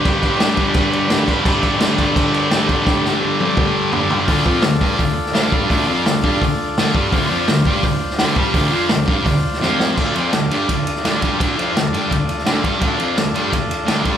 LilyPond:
<<
  \new Staff \with { instrumentName = "Transistor combo organ" } { \time 4/4 \key d \minor \tempo 4 = 169 <d' g' b'>1 | <d' g' a'>1~ | <d' g' a'>1 | <d' f' a'>1~ |
<d' f' a'>1 | <d' f' c''>1~ | <d' f' c''>1 | <d' f' a'>1~ |
<d' f' a'>1 | <d' f' a'>1 | }
  \new Staff \with { instrumentName = "Distorted electric guitar" } { \clef bass \time 4/4 \key d \minor <g, d g>8 <d g>8 <g, d g>8 <d g>4. <g, d g>8 <d g>8 | <g, d g>8 <d g>8 <g, d g>8 <d g>4. <g, d g>8 <d g>8 | <g, d g>8 <d g>8 <g, d g>8 <d g>4. <g, d g>8 <d g>8 | <d, d>8 <f, f>8 d,8 <g, g>8 d,8 r8 <d, d>8 <g, g>8 |
<d, d>8 <f, f>8 d,8 <g, g>8 d,8 r8 <d, d>8 <g, g>8 | <d, d>8 <f, f>8 d,8 <g, g>8 d,8 r8 <d, d>8 <g, g>8 | <d, d>8 <f, f>8 d,8 <g, g>8 d,8 r8 <f, f>4 | <d, d>8 <f, f>8 d,8 <g, g>8 d,8 r8 <d, d>8 <g, g>8 |
<d, d>8 <f, f>8 d,8 <g, g>8 d,8 r8 <d, d>8 <g, g>8 | <d, d>8 <f, f>8 d,8 <g, g>8 d,8 r8 <d, d>8 <g, g>8 | }
  \new DrumStaff \with { instrumentName = "Drums" } \drummode { \time 4/4 <cymc bd>8 <cymc bd>8 <cymc sn>8 <cymc bd>8 <cymc bd>8 cymc8 <cymc sn>8 <cymc bd>8 | <cymc bd>8 <cymc bd>8 <cymc sn>8 <cymc bd>8 <cymc bd>8 cymc8 <cymc sn>8 <cymc bd>8 | <bd sn>8 sn8 r8 tommh8 <bd toml>4 tomfh8 tomfh8 | <hho bd>8 bd8 <hho sn>8 bd8 <hho bd>8. sn16 <hho sn>8 bd8 |
<hho bd>4 <hho sn>8 bd8 <hho bd>4 <hho sn>8 bd8 | <hho bd>4 <hho sn>8 bd8 <hho bd>8. sn16 <hho sn>8 bd8 | <hho bd>4 <hho sn>8 bd8 <hho bd>8. sn16 sn8 sn8 | <cymc bd>8 cymr8 <cymr sn>8 cymr8 <bd cymr>8 cymr16 sn16 <cymr sn>8 <bd cymr>8 |
<bd cymr>8 cymr8 <cymr sn>8 cymr8 <bd cymr>8 cymr16 sn16 <cymr sn>8 <bd cymr>8 | <bd cymr>8 cymr8 <cymr sn>8 cymr8 <bd cymr>8 cymr8 <cymr sn>8 <bd cymr>8 | }
>>